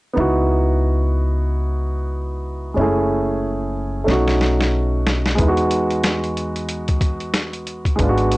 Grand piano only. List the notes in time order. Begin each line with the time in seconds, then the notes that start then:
0.13 B3 D#4
0.18 E4 F#4
2.74 G#3 C#4
2.79 A3 E4 G#4
4.04 A3 C#4
4.09 D#4 F#4
5.35 G#3 B3
5.40 D#4 E4
5.48 F#4
7.96 G#3 B3
8.00 D4 F4
8.09 F#4